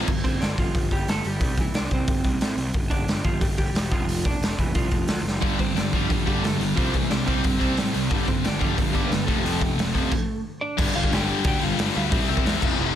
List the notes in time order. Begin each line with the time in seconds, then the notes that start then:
0.08 G1, kick, crash
0.24 G1 C4 C5, kick, open hi-hat
0.40 G1 D4 D5, snare, open hi-hat
0.58 G1 F3 F4, kick, open hi-hat
0.75 G1, kick, open hi-hat
0.91 G1 G3 G4, kick, open hi-hat
1.08 G1 A3 A4, snare, open hi-hat
1.24 G1 G3 G4, open hi-hat
1.40 C2, kick, open hi-hat
1.57 E3 E4, kick, open hi-hat
1.74 C2 D4 D5, snare, open hi-hat
1.91 C2 C4 C5, kick, open hi-hat
2.08 G1, kick, open hi-hat
2.24 C2, kick, open hi-hat
2.41 A2, snare, open hi-hat
2.57 C2, open hi-hat
2.74 G1, kick, open hi-hat
2.90 G1 D4 D5, kick, open hi-hat
3.06 G1, snare, open hi-hat
3.24 G1 F3 F4, kick, open hi-hat
3.41 G1 G3 G4, kick, open hi-hat
3.58 G1 G3 G4, kick, open hi-hat
3.73 E1, snare, open hi-hat
3.91 F1 F3 F4, kick, open hi-hat
4.07 F1, open hi-hat
4.25 D4 D5, kick, open hi-hat
4.39 F1, open hi-hat
4.44 snare
4.58 F1 E3 E4, kick, open hi-hat
4.75 C2 F3 F4, kick, open hi-hat
4.91 F1, kick, open hi-hat
5.07 D2, snare, open hi-hat
5.23 F#1
5.28 snare
5.42 G1 G2 D3 G3, kick, open hi-hat
5.59 G1 G2 D3 C4 C5, kick, open hi-hat
5.75 G1 G2 D3 D4 D5, snare, open hi-hat
5.93 G1 G2 D3 F3 G3 F4, kick, open hi-hat
6.10 G1 G2 D3 G3, kick, open hi-hat
6.26 G1 G2 D3 G3 G4, kick, open hi-hat
6.42 G1 G2 D3 A3 A4, snare, open hi-hat
6.58 G1 G2 D3 G3 G4, open hi-hat
6.76 C2 C3 F3 G3 C4 F4, kick, open hi-hat
6.94 C3 E3 G3 E4, kick, open hi-hat
7.09 C2 C3 G3 D4 D5, snare, open hi-hat
7.26 C2 C3 G3 C4 C5, kick, open hi-hat
7.43 G1 C3 G3 C4, kick, open hi-hat
7.59 C2 C3 G3 C4, kick, open hi-hat
7.77 A2 C3 G3, snare, open hi-hat
7.93 C2 C3 G3, open hi-hat
8.10 G1 G2 D3 G3, kick, open hi-hat
8.27 G1 G2 D3 C4 C5, kick, open hi-hat
8.44 G1 G2 D3 D4 D5, snare, open hi-hat
8.59 G1 G2 D3 G3 F4, kick, open hi-hat
8.65 F3
8.78 G1 G2 D3 G3, kick, open hi-hat
8.91 G1 G2 D3 G3 G4, kick, open hi-hat
9.06 G2 B4
9.10 G1 D3 B3, snare, open hi-hat
9.24 F2 C3 F3 A4, kick, open hi-hat
9.29 F1 A3
9.44 F1 F2 C3 F3, open hi-hat
9.60 F2 C3, kick, open hi-hat
9.78 F1 F2 C3, snare, open hi-hat
9.94 F1 F2 C3 F3, kick, open hi-hat
10.12 kick, crash
10.61 D4 D5
10.77 G1 G2 D3 G3, kick, crash
10.95 G1 G2 D3 G3 F4 F5
11.03 kick
11.11 G1 G2 D3 G3 G4 G5, snare, open hi-hat
11.29 G2 D3 G3
11.44 D2 G2 D3 G3 G4 G5, kick, open hi-hat
11.60 G1 G2 D3 G3 F4 F5
11.78 G1 G2 D3 G3, snare, open hi-hat
11.95 D2 G2 D3 G3 E4 E5
12.11 C2 C3 G3 C4, kick, open hi-hat
12.29 C2 C3 G3 C4
12.37 kick
12.44 E2 C3 G3 C4, snare, open hi-hat
12.61 F1 F2 C3 F3, kick, crash
12.76 F1 F2 C3 F3